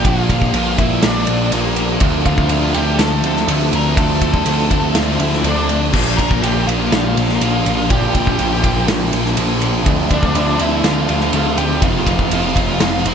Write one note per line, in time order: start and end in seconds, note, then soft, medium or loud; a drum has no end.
0.00 0.77 A#3 medium
0.00 1.02 D4 medium
0.04 0.49 A#1 loud
0.04 0.53 A#2 loud
0.04 0.54 A#2 loud
0.04 0.53 D3 loud
0.04 0.53 F3 medium
0.04 0.31 F3 loud
0.04 0.30 G3 loud
0.04 0.28 A#3 loud
0.04 0.30 D4 loud
0.04 0.78 F4 loud
0.04 0.29 F4 loud
0.04 kick loud
0.04 ride loud
0.29 0.54 F3 medium
0.29 0.53 G3 medium
0.29 0.55 A#3 medium
0.29 0.55 D4 medium
0.29 0.55 F4 medium
0.29 kick medium
0.29 ride medium
0.42 kick medium
0.53 0.76 A#1 loud
0.53 1.50 A#2 loud
0.53 1.03 D3 medium
0.53 1.27 F3 medium
0.53 1.29 F3 loud
0.53 0.79 G3 medium
0.53 1.26 A#3 loud
0.53 0.79 D4 medium
0.53 0.78 F4 medium
0.53 ride loud
0.78 1.00 A#1 medium
0.78 1.50 A#2 medium
0.78 1.52 F3 medium
0.78 1.03 G3 medium
0.78 1.50 A#3 medium
0.78 1.51 A#3 medium
0.78 1.05 D4 medium
0.78 1.03 E4 loud
0.78 1.05 F4 medium
0.78 kick medium
0.78 ride medium
1.02 1.25 A#1 loud
1.02 1.52 A#2 medium
1.02 1.51 D3 loud
1.02 1.29 G3 loud
1.02 1.76 D4 medium
1.02 1.48 D4 loud
1.02 1.28 D4 loud
1.02 1.27 F4 loud
1.02 snare loud
1.02 ride loud
1.27 1.50 A#1 loud
1.27 2.01 F3 medium
1.27 1.52 F3 medium
1.27 1.52 G3 medium
1.27 1.52 A#3 medium
1.27 1.53 D4 medium
1.27 1.54 F4 medium
1.27 ride medium
1.51 1.96 A#1 loud
1.51 1.99 A#2 medium
1.51 1.99 D3 medium
1.51 1.78 F3 medium
1.51 2.00 G3 medium
1.51 2.01 A#3 medium
1.51 1.75 A#3 medium
1.51 1.87 A#3 medium
1.51 2.01 D4 medium
1.51 2.02 F4 medium
1.51 ride loud
1.76 2.02 F3 medium
1.76 2.00 A#3 medium
1.76 2.99 D4 medium
1.76 ride medium
2.00 2.23 D2 loud
2.00 2.49 D3 loud
2.00 2.49 F3 medium
2.00 2.27 A3 loud
2.00 2.27 A3 medium
2.00 2.26 C4 loud
2.00 2.25 D4 loud
2.00 2.25 F4 loud
2.00 kick loud
2.00 ride loud
2.25 2.48 D2 loud
2.25 2.50 A3 medium
2.25 2.51 C4 medium
2.25 2.51 D4 medium
2.25 2.52 F4 medium
2.25 2.48 F4 medium
2.25 kick medium
2.25 ride medium
2.38 kick medium
2.49 2.72 D2 loud
2.49 2.99 D3 medium
2.49 3.46 D3 medium
2.49 3.24 F3 medium
2.49 2.76 A3 medium
2.49 3.25 A3 loud
2.49 2.75 C4 medium
2.49 3.23 D4 loud
2.49 2.74 F4 medium
2.49 ride loud
2.73 2.97 D2 medium
2.73 3.46 D3 medium
2.73 3.46 A3 medium
2.73 3.47 A3 medium
2.73 3.00 A3 medium
2.73 3.00 C4 medium
2.73 3.50 D4 medium
2.73 3.02 F4 medium
2.73 3.00 G4 loud
2.73 ride medium
2.99 3.21 D2 loud
2.99 3.47 D3 loud
2.99 3.24 A3 loud
2.99 3.71 C4 medium
2.99 3.23 C4 loud
2.99 3.23 F4 loud
2.99 3.45 A4 loud
2.99 snare loud
2.99 ride loud
3.24 3.46 D2 medium
3.24 3.97 F3 medium
3.24 3.48 A3 medium
3.24 3.47 A3 medium
3.24 3.49 C4 medium
3.24 3.49 D4 medium
3.24 3.50 F4 medium
3.24 ride medium
3.36 snare soft
3.47 3.70 D2 loud
3.47 3.95 D3 medium
3.47 3.97 D3 medium
3.47 4.69 A3 medium
3.47 3.74 A3 medium
3.47 3.97 A3 medium
3.47 3.98 C4 medium
3.47 3.73 D4 medium
3.47 3.99 F4 medium
3.47 ride loud
3.72 3.95 D2 loud
3.72 3.96 A3 medium
3.72 4.94 C4 medium
3.72 3.98 D4 medium
3.72 3.98 A#4 loud
3.72 ride medium
3.96 4.41 D2 loud
3.96 4.44 D3 loud
3.96 4.46 F3 medium
3.96 4.22 A3 loud
3.96 4.23 A3 loud
3.96 4.22 C4 loud
3.96 4.21 D4 loud
3.96 4.22 F4 loud
3.96 4.99 A4 loud
3.96 kick loud
3.96 ride loud
4.21 4.46 A3 medium
4.21 4.45 A3 medium
4.21 4.46 C4 medium
4.21 4.47 D4 medium
4.21 4.47 F4 medium
4.21 kick medium
4.21 ride medium
4.34 kick medium
4.45 4.68 D2 medium
4.45 4.94 D3 medium
4.45 5.43 D3 medium
4.45 5.19 F3 medium
4.45 4.72 A3 medium
4.45 5.21 A3 loud
4.45 4.71 C4 medium
4.45 5.20 D4 loud
4.45 4.71 F4 medium
4.45 ride loud
4.70 4.93 D2 medium
4.70 5.42 D3 medium
4.70 5.43 A3 medium
4.70 4.94 A3 medium
4.70 4.96 C4 medium
4.70 5.46 D4 medium
4.70 4.97 F4 medium
4.70 kick medium
4.70 ride medium
4.95 5.18 D2 medium
4.95 5.42 D3 medium
4.95 5.21 A3 loud
4.95 5.68 C4 medium
4.95 5.20 C4 loud
4.95 5.20 F4 loud
4.95 5.19 F4 loud
4.95 snare loud
4.95 ride loud
5.19 5.42 D2 medium
5.19 5.94 F3 medium
5.19 5.43 A3 medium
5.19 5.45 A3 medium
5.19 5.44 C4 medium
5.19 5.46 D4 medium
5.19 5.46 E4 medium
5.19 5.45 F4 medium
5.19 ride medium
5.33 snare soft
5.44 5.94 D2 loud
5.44 5.92 D3 medium
5.44 5.92 A3 medium
5.44 5.94 A3 medium
5.44 5.70 A3 medium
5.44 5.93 C4 medium
5.44 5.79 D4 medium
5.44 5.68 D4 medium
5.44 5.94 F4 medium
5.44 ride loud
5.69 5.93 A3 medium
5.69 5.94 C4 medium
5.69 5.95 D4 medium
5.69 ride medium
5.92 6.16 A#1 medium
5.92 6.91 A#2 loud
5.92 6.42 A#2 loud
5.92 6.41 D3 loud
5.92 6.42 F3 medium
5.92 6.19 F3 loud
5.92 6.19 G3 loud
5.92 6.17 A#3 loud
5.92 6.18 D4 loud
5.92 6.17 F4 loud
5.92 kick loud
5.92 crash loud
6.17 6.41 A#1 medium
6.17 6.43 F3 medium
6.17 6.43 G3 medium
6.17 6.44 A#3 medium
6.17 6.43 D4 medium
6.17 6.44 F4 medium
6.17 6.43 A#4 loud
6.17 kick medium
6.17 ride medium
6.31 kick loud
6.42 6.65 A#1 medium
6.42 7.40 A#2 loud
6.42 6.91 D3 medium
6.42 7.16 F3 medium
6.42 7.18 F3 loud
6.42 6.70 G3 medium
6.42 7.16 A#3 loud
6.42 6.68 D4 medium
6.42 6.67 F4 medium
6.42 6.66 G4 loud
6.42 ride loud
6.66 6.89 A#1 medium
6.66 7.39 A#2 medium
6.66 7.42 F3 medium
6.66 6.92 G3 medium
6.66 7.39 A#3 medium
6.66 7.40 A#3 medium
6.66 6.93 D4 medium
6.66 6.91 F4 medium
6.66 6.94 F4 medium
6.66 ride medium
6.92 7.14 A#1 loud
6.92 7.41 A#2 loud
6.92 7.40 D3 loud
6.92 7.18 G3 loud
6.92 7.65 D4 medium
6.92 7.17 D4 loud
6.92 7.91 F4 loud
6.92 7.16 F4 loud
6.92 snare loud
6.92 ride loud
7.17 7.39 A#1 loud
7.17 7.90 F3 medium
7.17 7.41 F3 medium
7.17 7.40 G3 medium
7.17 7.42 A#3 medium
7.17 7.42 D4 medium
7.17 7.43 F4 medium
7.17 ride medium
7.29 snare soft
7.41 7.63 A#1 medium
7.41 7.89 A#2 medium
7.41 7.89 D3 medium
7.41 7.67 F3 medium
7.41 7.90 G3 medium
7.41 8.63 A#3 medium
7.41 7.64 A#3 medium
7.41 7.91 D4 medium
7.41 7.92 F4 medium
7.41 ride loud
7.66 7.88 A#1 medium
7.66 7.91 F3 medium
7.66 7.91 A#3 medium
7.66 8.88 D4 medium
7.66 ride medium
7.90 8.34 A#1 loud
7.90 8.39 A#2 loud
7.90 8.38 A#2 medium
7.90 8.37 D3 loud
7.90 8.39 F3 medium
7.90 8.17 F3 loud
7.90 8.16 G3 loud
7.90 8.14 A#3 loud
7.90 8.16 D4 loud
7.90 8.15 F4 loud
7.90 8.85 G4 medium
7.90 kick loud
7.90 ride loud
8.15 8.40 F3 medium
8.15 8.38 G3 medium
8.15 8.40 A#3 medium
8.15 8.40 D4 medium
8.15 8.40 F4 medium
8.15 kick medium
8.15 ride medium
8.27 kick medium
8.38 8.61 A#1 medium
8.38 9.36 A#2 loud
8.38 8.87 D3 medium
8.38 9.13 F3 medium
8.38 9.14 F3 medium
8.38 8.64 G3 medium
8.38 9.11 A#3 loud
8.38 8.65 D4 medium
8.38 8.63 F4 medium
8.38 ride loud
8.63 8.86 A#1 medium
8.63 9.35 A#2 medium
8.63 9.37 F3 medium
8.63 8.88 G3 medium
8.63 9.35 A#3 medium
8.63 9.36 A#3 medium
8.63 8.88 D4 medium
8.63 8.90 F4 medium
8.63 kick medium
8.63 ride medium
8.87 9.10 A#1 medium
8.87 9.37 A#2 loud
8.87 9.35 D3 loud
8.87 9.12 G3 loud
8.87 9.61 D4 medium
8.87 9.11 D4 loud
8.87 9.11 F4 loud
8.87 snare loud
8.87 ride loud
9.11 9.35 A#1 loud
9.11 9.86 F3 medium
9.11 9.37 F3 medium
9.11 9.36 G3 medium
9.11 9.37 A#3 medium
9.11 9.37 D4 medium
9.11 9.38 F4 medium
9.11 ride medium
9.26 snare soft
9.37 9.86 A#1 medium
9.37 9.85 A#2 medium
9.37 9.83 D3 medium
9.37 9.63 F3 medium
9.37 9.85 G3 medium
9.37 9.86 A#3 medium
9.37 9.60 A#3 medium
9.37 9.85 D4 medium
9.37 9.86 F4 loud
9.37 ride loud
9.61 9.86 F3 medium
9.61 9.84 A#3 medium
9.61 9.86 D4 medium
9.61 ride medium
9.85 10.08 D2 loud
9.85 10.31 D3 loud
9.85 10.33 D3 loud
9.85 10.35 F3 medium
9.85 10.11 A3 loud
9.85 10.10 C4 loud
9.85 10.09 D4 loud
9.85 10.09 F4 loud
9.85 kick loud
9.85 ride loud
10.09 10.33 D2 medium
10.09 10.33 A3 medium
10.09 10.35 A3 medium
10.09 10.34 C4 medium
10.09 10.35 D4 medium
10.09 10.34 F4 medium
10.09 kick medium
10.09 ride medium
10.14 10.37 D4 medium
10.23 kick medium
10.32 10.57 D2 loud
10.32 10.81 D3 medium
10.32 11.31 D3 medium
10.32 10.59 F3 medium
10.32 10.60 A3 medium
10.32 11.09 A3 loud
10.32 10.59 C4 medium
10.32 11.07 D4 loud
10.32 10.58 F4 medium
10.32 ride loud
10.38 10.62 D4 medium
10.58 10.82 D2 loud
10.58 11.31 D3 medium
10.58 11.08 F3 medium
10.58 11.32 A3 medium
10.58 10.82 A3 medium
10.58 10.83 C4 medium
10.58 11.31 D4 medium
10.58 10.85 E4 loud
10.58 10.84 F4 medium
10.58 ride medium
10.82 11.06 D2 loud
10.82 11.30 D3 loud
10.82 11.09 A3 loud
10.82 11.56 A3 medium
10.82 11.07 C4 loud
10.82 11.07 F4 loud
10.82 11.58 F4 loud
10.82 snare loud
10.82 ride loud
11.07 11.31 D2 loud
11.07 11.33 F3 medium
11.07 11.31 A3 medium
11.07 11.32 A3 medium
11.07 11.32 C4 medium
11.07 11.33 D4 medium
11.07 11.33 F4 medium
11.07 ride medium
11.21 snare soft
11.31 11.55 D2 medium
11.31 11.80 D3 medium
11.31 12.32 F3 medium
11.31 11.80 A3 medium
11.31 11.58 A3 medium
11.31 11.81 C4 medium
11.31 11.56 D4 medium
11.31 11.83 F4 medium
11.31 ride loud
11.57 11.80 D2 loud
11.57 11.82 A3 medium
11.57 11.81 A3 medium
11.57 11.81 D4 medium
11.57 11.83 G4 loud
11.57 ride medium
11.81 12.26 F1 loud
11.81 12.29 F2 loud
11.81 12.06 C3 loud
11.81 12.29 F3 loud
11.81 12.05 F3 loud
11.81 12.06 A3 loud
11.81 12.05 C4 loud
11.81 12.05 E4 loud
11.81 13.14 F4 loud
11.81 kick loud
11.81 ride loud
12.06 12.30 C3 medium
12.06 12.30 F3 medium
12.06 12.30 A3 medium
12.06 12.31 C4 medium
12.06 12.31 E4 medium
12.06 kick medium
12.06 ride medium
12.19 kick medium
12.30 12.53 F1 loud
12.30 13.14 F2 medium
12.30 13.05 C3 loud
12.30 12.79 F3 medium
12.30 13.03 F3 loud
12.30 12.56 A3 medium
12.30 12.55 C4 medium
12.30 12.54 E4 medium
12.30 ride loud
12.54 12.78 F1 medium
12.54 13.14 F2 medium
12.54 13.14 C3 medium
12.54 13.14 F3 medium
12.54 12.79 A3 medium
12.54 12.80 C4 medium
12.54 12.81 E4 medium
12.54 kick medium
12.54 ride medium
12.80 13.02 F1 loud
12.80 13.14 F3 medium
12.80 13.14 A3 medium
12.80 13.06 A3 loud
12.80 13.04 C4 loud
12.80 13.03 E4 loud
12.80 snare loud
12.80 ride loud
13.04 13.14 F1 medium
13.04 13.14 C3 medium
13.04 13.14 F3 medium
13.04 13.14 A3 medium
13.04 13.14 C4 medium
13.04 13.14 E4 medium
13.04 13.14 C5 medium
13.04 ride medium